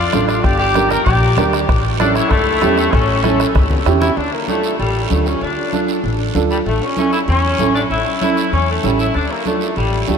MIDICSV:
0, 0, Header, 1, 7, 480
1, 0, Start_track
1, 0, Key_signature, -1, "minor"
1, 0, Tempo, 310881
1, 686, Time_signature, 4, 2, 24, 8
1, 15716, End_track
2, 0, Start_track
2, 0, Title_t, "Trumpet"
2, 0, Program_c, 0, 56
2, 0, Note_on_c, 0, 74, 87
2, 405, Note_off_c, 0, 74, 0
2, 430, Note_on_c, 0, 74, 76
2, 675, Note_off_c, 0, 74, 0
2, 675, Note_on_c, 0, 74, 83
2, 904, Note_off_c, 0, 74, 0
2, 914, Note_on_c, 0, 74, 86
2, 1393, Note_on_c, 0, 79, 81
2, 1416, Note_off_c, 0, 74, 0
2, 1628, Note_off_c, 0, 79, 0
2, 1637, Note_on_c, 0, 74, 84
2, 2309, Note_off_c, 0, 74, 0
2, 3086, Note_on_c, 0, 69, 79
2, 3327, Note_on_c, 0, 73, 84
2, 3351, Note_off_c, 0, 69, 0
2, 3559, Note_on_c, 0, 64, 83
2, 3582, Note_off_c, 0, 73, 0
2, 4516, Note_on_c, 0, 69, 82
2, 4539, Note_off_c, 0, 64, 0
2, 5477, Note_off_c, 0, 69, 0
2, 15716, End_track
3, 0, Start_track
3, 0, Title_t, "Upright piano"
3, 0, Program_c, 1, 0
3, 206, Note_on_c, 1, 62, 74
3, 210, Note_on_c, 1, 65, 73
3, 216, Note_on_c, 1, 69, 81
3, 542, Note_off_c, 1, 62, 0
3, 544, Note_off_c, 1, 65, 0
3, 547, Note_off_c, 1, 69, 0
3, 1157, Note_on_c, 1, 62, 70
3, 1163, Note_on_c, 1, 67, 65
3, 1168, Note_on_c, 1, 70, 82
3, 1496, Note_off_c, 1, 62, 0
3, 1499, Note_off_c, 1, 67, 0
3, 1502, Note_off_c, 1, 70, 0
3, 2118, Note_on_c, 1, 62, 74
3, 2128, Note_on_c, 1, 67, 68
3, 2131, Note_on_c, 1, 70, 81
3, 2456, Note_off_c, 1, 62, 0
3, 2461, Note_off_c, 1, 67, 0
3, 2462, Note_off_c, 1, 70, 0
3, 3081, Note_on_c, 1, 61, 70
3, 3087, Note_on_c, 1, 64, 61
3, 3095, Note_on_c, 1, 69, 78
3, 3417, Note_off_c, 1, 61, 0
3, 3420, Note_off_c, 1, 64, 0
3, 3424, Note_off_c, 1, 69, 0
3, 4045, Note_on_c, 1, 61, 75
3, 4052, Note_on_c, 1, 64, 66
3, 4055, Note_on_c, 1, 67, 87
3, 4378, Note_off_c, 1, 61, 0
3, 4382, Note_off_c, 1, 64, 0
3, 4383, Note_off_c, 1, 67, 0
3, 4999, Note_on_c, 1, 61, 67
3, 5006, Note_on_c, 1, 64, 64
3, 5009, Note_on_c, 1, 69, 75
3, 5335, Note_off_c, 1, 61, 0
3, 5338, Note_off_c, 1, 64, 0
3, 5340, Note_off_c, 1, 69, 0
3, 5958, Note_on_c, 1, 61, 85
3, 5969, Note_on_c, 1, 64, 82
3, 5972, Note_on_c, 1, 67, 99
3, 6294, Note_off_c, 1, 61, 0
3, 6299, Note_off_c, 1, 64, 0
3, 6301, Note_off_c, 1, 67, 0
3, 6907, Note_on_c, 1, 62, 63
3, 6909, Note_on_c, 1, 65, 55
3, 6914, Note_on_c, 1, 69, 73
3, 7248, Note_off_c, 1, 62, 0
3, 7249, Note_off_c, 1, 65, 0
3, 7252, Note_off_c, 1, 69, 0
3, 7870, Note_on_c, 1, 62, 64
3, 7874, Note_on_c, 1, 65, 61
3, 7882, Note_on_c, 1, 69, 73
3, 8210, Note_off_c, 1, 62, 0
3, 8212, Note_off_c, 1, 65, 0
3, 8216, Note_off_c, 1, 69, 0
3, 8834, Note_on_c, 1, 62, 69
3, 8841, Note_on_c, 1, 65, 60
3, 8850, Note_on_c, 1, 69, 71
3, 9172, Note_off_c, 1, 62, 0
3, 9176, Note_off_c, 1, 65, 0
3, 9180, Note_off_c, 1, 69, 0
3, 9794, Note_on_c, 1, 62, 78
3, 9802, Note_on_c, 1, 65, 78
3, 9810, Note_on_c, 1, 69, 88
3, 10132, Note_off_c, 1, 62, 0
3, 10137, Note_off_c, 1, 65, 0
3, 10141, Note_off_c, 1, 69, 0
3, 10759, Note_on_c, 1, 61, 65
3, 10768, Note_on_c, 1, 64, 60
3, 10772, Note_on_c, 1, 69, 70
3, 11095, Note_off_c, 1, 61, 0
3, 11100, Note_off_c, 1, 64, 0
3, 11102, Note_off_c, 1, 69, 0
3, 11717, Note_on_c, 1, 61, 68
3, 11726, Note_on_c, 1, 64, 58
3, 11730, Note_on_c, 1, 69, 77
3, 12055, Note_off_c, 1, 61, 0
3, 12059, Note_off_c, 1, 64, 0
3, 12061, Note_off_c, 1, 69, 0
3, 12673, Note_on_c, 1, 61, 67
3, 12679, Note_on_c, 1, 64, 59
3, 12683, Note_on_c, 1, 69, 71
3, 13013, Note_off_c, 1, 61, 0
3, 13016, Note_off_c, 1, 64, 0
3, 13018, Note_off_c, 1, 69, 0
3, 13639, Note_on_c, 1, 61, 68
3, 13643, Note_on_c, 1, 64, 64
3, 13652, Note_on_c, 1, 69, 79
3, 13976, Note_off_c, 1, 61, 0
3, 13978, Note_off_c, 1, 64, 0
3, 13982, Note_off_c, 1, 69, 0
3, 14597, Note_on_c, 1, 62, 60
3, 14602, Note_on_c, 1, 65, 56
3, 14609, Note_on_c, 1, 69, 70
3, 14935, Note_off_c, 1, 62, 0
3, 14938, Note_off_c, 1, 65, 0
3, 14941, Note_off_c, 1, 69, 0
3, 15555, Note_on_c, 1, 62, 69
3, 15563, Note_on_c, 1, 65, 58
3, 15567, Note_on_c, 1, 67, 73
3, 15716, Note_off_c, 1, 62, 0
3, 15716, Note_off_c, 1, 65, 0
3, 15716, Note_off_c, 1, 67, 0
3, 15716, End_track
4, 0, Start_track
4, 0, Title_t, "Saxophone section"
4, 0, Program_c, 2, 65
4, 0, Note_on_c, 2, 65, 90
4, 402, Note_off_c, 2, 65, 0
4, 426, Note_on_c, 2, 65, 87
4, 658, Note_off_c, 2, 65, 0
4, 674, Note_on_c, 2, 67, 97
4, 898, Note_off_c, 2, 67, 0
4, 916, Note_on_c, 2, 67, 100
4, 1366, Note_off_c, 2, 67, 0
4, 1393, Note_on_c, 2, 70, 103
4, 1626, Note_on_c, 2, 67, 109
4, 1638, Note_off_c, 2, 70, 0
4, 2303, Note_off_c, 2, 67, 0
4, 3092, Note_on_c, 2, 62, 94
4, 3310, Note_off_c, 2, 62, 0
4, 3321, Note_on_c, 2, 64, 103
4, 3554, Note_on_c, 2, 57, 113
4, 3561, Note_off_c, 2, 64, 0
4, 4502, Note_on_c, 2, 61, 93
4, 4516, Note_off_c, 2, 57, 0
4, 5469, Note_off_c, 2, 61, 0
4, 6191, Note_on_c, 2, 64, 98
4, 6417, Note_off_c, 2, 64, 0
4, 6441, Note_on_c, 2, 62, 89
4, 6679, Note_off_c, 2, 62, 0
4, 6690, Note_on_c, 2, 58, 78
4, 6919, Note_on_c, 2, 57, 84
4, 6924, Note_off_c, 2, 58, 0
4, 7365, Note_off_c, 2, 57, 0
4, 7403, Note_on_c, 2, 55, 89
4, 7847, Note_off_c, 2, 55, 0
4, 7890, Note_on_c, 2, 57, 81
4, 8124, Note_off_c, 2, 57, 0
4, 8135, Note_on_c, 2, 61, 87
4, 8367, Note_off_c, 2, 61, 0
4, 8379, Note_on_c, 2, 62, 82
4, 9267, Note_off_c, 2, 62, 0
4, 10052, Note_on_c, 2, 55, 78
4, 10157, Note_off_c, 2, 55, 0
4, 10287, Note_on_c, 2, 57, 86
4, 10506, Note_off_c, 2, 57, 0
4, 10544, Note_on_c, 2, 61, 87
4, 10772, Note_off_c, 2, 61, 0
4, 10791, Note_on_c, 2, 61, 92
4, 11000, Note_off_c, 2, 61, 0
4, 11013, Note_on_c, 2, 64, 90
4, 11118, Note_off_c, 2, 64, 0
4, 11260, Note_on_c, 2, 61, 114
4, 11921, Note_off_c, 2, 61, 0
4, 11968, Note_on_c, 2, 62, 80
4, 12074, Note_off_c, 2, 62, 0
4, 12216, Note_on_c, 2, 64, 91
4, 12655, Note_off_c, 2, 64, 0
4, 12695, Note_on_c, 2, 64, 96
4, 13135, Note_off_c, 2, 64, 0
4, 13181, Note_on_c, 2, 61, 97
4, 13395, Note_off_c, 2, 61, 0
4, 13433, Note_on_c, 2, 57, 83
4, 13641, Note_off_c, 2, 57, 0
4, 13665, Note_on_c, 2, 55, 81
4, 13877, Note_off_c, 2, 55, 0
4, 13903, Note_on_c, 2, 64, 93
4, 14116, Note_off_c, 2, 64, 0
4, 14128, Note_on_c, 2, 62, 83
4, 14348, Note_off_c, 2, 62, 0
4, 14375, Note_on_c, 2, 58, 79
4, 14605, Note_on_c, 2, 57, 75
4, 14608, Note_off_c, 2, 58, 0
4, 15050, Note_off_c, 2, 57, 0
4, 15091, Note_on_c, 2, 55, 95
4, 15533, Note_off_c, 2, 55, 0
4, 15567, Note_on_c, 2, 57, 79
4, 15716, Note_off_c, 2, 57, 0
4, 15716, End_track
5, 0, Start_track
5, 0, Title_t, "Upright bass"
5, 0, Program_c, 3, 32
5, 214, Note_on_c, 3, 33, 94
5, 594, Note_off_c, 3, 33, 0
5, 681, Note_on_c, 3, 31, 99
5, 1450, Note_off_c, 3, 31, 0
5, 1640, Note_on_c, 3, 34, 93
5, 2025, Note_off_c, 3, 34, 0
5, 2131, Note_on_c, 3, 38, 91
5, 2511, Note_off_c, 3, 38, 0
5, 2606, Note_on_c, 3, 33, 92
5, 3372, Note_off_c, 3, 33, 0
5, 3562, Note_on_c, 3, 37, 92
5, 3945, Note_off_c, 3, 37, 0
5, 4047, Note_on_c, 3, 40, 91
5, 4428, Note_off_c, 3, 40, 0
5, 4524, Note_on_c, 3, 33, 97
5, 5289, Note_off_c, 3, 33, 0
5, 5484, Note_on_c, 3, 37, 89
5, 5866, Note_off_c, 3, 37, 0
5, 5964, Note_on_c, 3, 40, 89
5, 6346, Note_off_c, 3, 40, 0
5, 6441, Note_on_c, 3, 38, 91
5, 6632, Note_off_c, 3, 38, 0
5, 7402, Note_on_c, 3, 33, 89
5, 7784, Note_off_c, 3, 33, 0
5, 7885, Note_on_c, 3, 38, 84
5, 8266, Note_off_c, 3, 38, 0
5, 8362, Note_on_c, 3, 38, 81
5, 8553, Note_off_c, 3, 38, 0
5, 9322, Note_on_c, 3, 33, 90
5, 9705, Note_off_c, 3, 33, 0
5, 9804, Note_on_c, 3, 38, 85
5, 10186, Note_off_c, 3, 38, 0
5, 10282, Note_on_c, 3, 33, 89
5, 10473, Note_off_c, 3, 33, 0
5, 11242, Note_on_c, 3, 40, 93
5, 11625, Note_off_c, 3, 40, 0
5, 11716, Note_on_c, 3, 33, 83
5, 12102, Note_off_c, 3, 33, 0
5, 12200, Note_on_c, 3, 33, 82
5, 12392, Note_off_c, 3, 33, 0
5, 13165, Note_on_c, 3, 40, 89
5, 13547, Note_off_c, 3, 40, 0
5, 13650, Note_on_c, 3, 33, 89
5, 14030, Note_off_c, 3, 33, 0
5, 14130, Note_on_c, 3, 38, 84
5, 14318, Note_off_c, 3, 38, 0
5, 15082, Note_on_c, 3, 33, 86
5, 15466, Note_off_c, 3, 33, 0
5, 15564, Note_on_c, 3, 38, 80
5, 15716, Note_off_c, 3, 38, 0
5, 15716, End_track
6, 0, Start_track
6, 0, Title_t, "Two-headed folk drums"
6, 200, Note_on_c, 9, 37, 89
6, 355, Note_off_c, 9, 37, 0
6, 442, Note_on_c, 9, 37, 83
6, 597, Note_off_c, 9, 37, 0
6, 681, Note_on_c, 9, 36, 86
6, 681, Note_on_c, 9, 37, 87
6, 835, Note_off_c, 9, 36, 0
6, 835, Note_off_c, 9, 37, 0
6, 1162, Note_on_c, 9, 37, 79
6, 1317, Note_off_c, 9, 37, 0
6, 1406, Note_on_c, 9, 37, 75
6, 1561, Note_off_c, 9, 37, 0
6, 1642, Note_on_c, 9, 36, 84
6, 1647, Note_on_c, 9, 37, 74
6, 1796, Note_off_c, 9, 36, 0
6, 1801, Note_off_c, 9, 37, 0
6, 2128, Note_on_c, 9, 37, 91
6, 2282, Note_off_c, 9, 37, 0
6, 2369, Note_on_c, 9, 37, 81
6, 2523, Note_off_c, 9, 37, 0
6, 2604, Note_on_c, 9, 36, 92
6, 2609, Note_on_c, 9, 37, 89
6, 2759, Note_off_c, 9, 36, 0
6, 2763, Note_off_c, 9, 37, 0
6, 3087, Note_on_c, 9, 37, 91
6, 3241, Note_off_c, 9, 37, 0
6, 3329, Note_on_c, 9, 37, 81
6, 3483, Note_off_c, 9, 37, 0
6, 3563, Note_on_c, 9, 36, 79
6, 3564, Note_on_c, 9, 37, 79
6, 3717, Note_off_c, 9, 36, 0
6, 3718, Note_off_c, 9, 37, 0
6, 4042, Note_on_c, 9, 37, 88
6, 4197, Note_off_c, 9, 37, 0
6, 4286, Note_on_c, 9, 37, 73
6, 4440, Note_off_c, 9, 37, 0
6, 4523, Note_on_c, 9, 36, 79
6, 4525, Note_on_c, 9, 37, 83
6, 4677, Note_off_c, 9, 36, 0
6, 4679, Note_off_c, 9, 37, 0
6, 5002, Note_on_c, 9, 37, 86
6, 5157, Note_off_c, 9, 37, 0
6, 5249, Note_on_c, 9, 37, 86
6, 5404, Note_off_c, 9, 37, 0
6, 5483, Note_on_c, 9, 36, 85
6, 5490, Note_on_c, 9, 37, 84
6, 5638, Note_off_c, 9, 36, 0
6, 5644, Note_off_c, 9, 37, 0
6, 5965, Note_on_c, 9, 37, 92
6, 6119, Note_off_c, 9, 37, 0
6, 6205, Note_on_c, 9, 37, 82
6, 6360, Note_off_c, 9, 37, 0
6, 15716, End_track
7, 0, Start_track
7, 0, Title_t, "Drums"
7, 203, Note_on_c, 9, 63, 84
7, 207, Note_on_c, 9, 73, 69
7, 358, Note_off_c, 9, 63, 0
7, 361, Note_off_c, 9, 73, 0
7, 445, Note_on_c, 9, 73, 69
7, 600, Note_off_c, 9, 73, 0
7, 686, Note_on_c, 9, 63, 33
7, 687, Note_on_c, 9, 74, 73
7, 840, Note_off_c, 9, 63, 0
7, 841, Note_off_c, 9, 74, 0
7, 1165, Note_on_c, 9, 73, 64
7, 1166, Note_on_c, 9, 63, 86
7, 1319, Note_off_c, 9, 73, 0
7, 1320, Note_off_c, 9, 63, 0
7, 1398, Note_on_c, 9, 73, 73
7, 1401, Note_on_c, 9, 64, 69
7, 1552, Note_off_c, 9, 73, 0
7, 1555, Note_off_c, 9, 64, 0
7, 1639, Note_on_c, 9, 74, 72
7, 1641, Note_on_c, 9, 63, 34
7, 1794, Note_off_c, 9, 74, 0
7, 1796, Note_off_c, 9, 63, 0
7, 2114, Note_on_c, 9, 63, 80
7, 2114, Note_on_c, 9, 64, 83
7, 2124, Note_on_c, 9, 73, 67
7, 2268, Note_off_c, 9, 63, 0
7, 2268, Note_off_c, 9, 64, 0
7, 2279, Note_off_c, 9, 73, 0
7, 2364, Note_on_c, 9, 73, 70
7, 2518, Note_off_c, 9, 73, 0
7, 2597, Note_on_c, 9, 63, 34
7, 2614, Note_on_c, 9, 74, 66
7, 2752, Note_off_c, 9, 63, 0
7, 2769, Note_off_c, 9, 74, 0
7, 3082, Note_on_c, 9, 63, 91
7, 3089, Note_on_c, 9, 73, 67
7, 3237, Note_off_c, 9, 63, 0
7, 3243, Note_off_c, 9, 73, 0
7, 3326, Note_on_c, 9, 73, 70
7, 3481, Note_off_c, 9, 73, 0
7, 3561, Note_on_c, 9, 74, 77
7, 3562, Note_on_c, 9, 63, 35
7, 3715, Note_off_c, 9, 74, 0
7, 3716, Note_off_c, 9, 63, 0
7, 4041, Note_on_c, 9, 63, 82
7, 4049, Note_on_c, 9, 73, 73
7, 4196, Note_off_c, 9, 63, 0
7, 4204, Note_off_c, 9, 73, 0
7, 4285, Note_on_c, 9, 73, 67
7, 4439, Note_off_c, 9, 73, 0
7, 4521, Note_on_c, 9, 74, 68
7, 4523, Note_on_c, 9, 63, 31
7, 4676, Note_off_c, 9, 74, 0
7, 4677, Note_off_c, 9, 63, 0
7, 4998, Note_on_c, 9, 73, 67
7, 4999, Note_on_c, 9, 63, 81
7, 5152, Note_off_c, 9, 73, 0
7, 5154, Note_off_c, 9, 63, 0
7, 5245, Note_on_c, 9, 73, 78
7, 5400, Note_off_c, 9, 73, 0
7, 5478, Note_on_c, 9, 74, 66
7, 5481, Note_on_c, 9, 64, 86
7, 5633, Note_off_c, 9, 74, 0
7, 5635, Note_off_c, 9, 64, 0
7, 5720, Note_on_c, 9, 64, 88
7, 5875, Note_off_c, 9, 64, 0
7, 5965, Note_on_c, 9, 73, 70
7, 5967, Note_on_c, 9, 64, 81
7, 6119, Note_off_c, 9, 73, 0
7, 6121, Note_off_c, 9, 64, 0
7, 6200, Note_on_c, 9, 64, 82
7, 6204, Note_on_c, 9, 73, 71
7, 6355, Note_off_c, 9, 64, 0
7, 6358, Note_off_c, 9, 73, 0
7, 6442, Note_on_c, 9, 74, 62
7, 6447, Note_on_c, 9, 63, 31
7, 6596, Note_off_c, 9, 74, 0
7, 6601, Note_off_c, 9, 63, 0
7, 6914, Note_on_c, 9, 63, 70
7, 6923, Note_on_c, 9, 73, 59
7, 7068, Note_off_c, 9, 63, 0
7, 7077, Note_off_c, 9, 73, 0
7, 7157, Note_on_c, 9, 73, 67
7, 7311, Note_off_c, 9, 73, 0
7, 7401, Note_on_c, 9, 63, 35
7, 7407, Note_on_c, 9, 74, 69
7, 7556, Note_off_c, 9, 63, 0
7, 7561, Note_off_c, 9, 74, 0
7, 7878, Note_on_c, 9, 63, 77
7, 7887, Note_on_c, 9, 73, 63
7, 8033, Note_off_c, 9, 63, 0
7, 8042, Note_off_c, 9, 73, 0
7, 8122, Note_on_c, 9, 73, 69
7, 8277, Note_off_c, 9, 73, 0
7, 8359, Note_on_c, 9, 74, 61
7, 8367, Note_on_c, 9, 63, 32
7, 8513, Note_off_c, 9, 74, 0
7, 8521, Note_off_c, 9, 63, 0
7, 8844, Note_on_c, 9, 63, 73
7, 8845, Note_on_c, 9, 73, 60
7, 8998, Note_off_c, 9, 63, 0
7, 9000, Note_off_c, 9, 73, 0
7, 9085, Note_on_c, 9, 73, 63
7, 9239, Note_off_c, 9, 73, 0
7, 9324, Note_on_c, 9, 74, 67
7, 9325, Note_on_c, 9, 63, 32
7, 9478, Note_off_c, 9, 74, 0
7, 9480, Note_off_c, 9, 63, 0
7, 9803, Note_on_c, 9, 63, 75
7, 9807, Note_on_c, 9, 73, 61
7, 9957, Note_off_c, 9, 63, 0
7, 9961, Note_off_c, 9, 73, 0
7, 10046, Note_on_c, 9, 73, 60
7, 10200, Note_off_c, 9, 73, 0
7, 10285, Note_on_c, 9, 63, 31
7, 10289, Note_on_c, 9, 74, 60
7, 10439, Note_off_c, 9, 63, 0
7, 10443, Note_off_c, 9, 74, 0
7, 10756, Note_on_c, 9, 63, 80
7, 10764, Note_on_c, 9, 73, 58
7, 10911, Note_off_c, 9, 63, 0
7, 10918, Note_off_c, 9, 73, 0
7, 11004, Note_on_c, 9, 73, 69
7, 11158, Note_off_c, 9, 73, 0
7, 11238, Note_on_c, 9, 74, 67
7, 11241, Note_on_c, 9, 63, 34
7, 11393, Note_off_c, 9, 74, 0
7, 11395, Note_off_c, 9, 63, 0
7, 11717, Note_on_c, 9, 63, 77
7, 11724, Note_on_c, 9, 73, 66
7, 11871, Note_off_c, 9, 63, 0
7, 11879, Note_off_c, 9, 73, 0
7, 11974, Note_on_c, 9, 73, 67
7, 12128, Note_off_c, 9, 73, 0
7, 12206, Note_on_c, 9, 63, 30
7, 12213, Note_on_c, 9, 74, 65
7, 12360, Note_off_c, 9, 63, 0
7, 12367, Note_off_c, 9, 74, 0
7, 12683, Note_on_c, 9, 63, 75
7, 12697, Note_on_c, 9, 73, 63
7, 12837, Note_off_c, 9, 63, 0
7, 12851, Note_off_c, 9, 73, 0
7, 12929, Note_on_c, 9, 73, 71
7, 13083, Note_off_c, 9, 73, 0
7, 13163, Note_on_c, 9, 63, 31
7, 13176, Note_on_c, 9, 74, 68
7, 13317, Note_off_c, 9, 63, 0
7, 13330, Note_off_c, 9, 74, 0
7, 13640, Note_on_c, 9, 63, 82
7, 13644, Note_on_c, 9, 73, 66
7, 13794, Note_off_c, 9, 63, 0
7, 13799, Note_off_c, 9, 73, 0
7, 13885, Note_on_c, 9, 73, 66
7, 14040, Note_off_c, 9, 73, 0
7, 14117, Note_on_c, 9, 74, 64
7, 14121, Note_on_c, 9, 63, 30
7, 14272, Note_off_c, 9, 74, 0
7, 14275, Note_off_c, 9, 63, 0
7, 14599, Note_on_c, 9, 63, 70
7, 14599, Note_on_c, 9, 73, 63
7, 14753, Note_off_c, 9, 63, 0
7, 14753, Note_off_c, 9, 73, 0
7, 14838, Note_on_c, 9, 73, 63
7, 14992, Note_off_c, 9, 73, 0
7, 15071, Note_on_c, 9, 74, 65
7, 15083, Note_on_c, 9, 63, 35
7, 15225, Note_off_c, 9, 74, 0
7, 15238, Note_off_c, 9, 63, 0
7, 15552, Note_on_c, 9, 73, 61
7, 15559, Note_on_c, 9, 63, 76
7, 15707, Note_off_c, 9, 73, 0
7, 15714, Note_off_c, 9, 63, 0
7, 15716, End_track
0, 0, End_of_file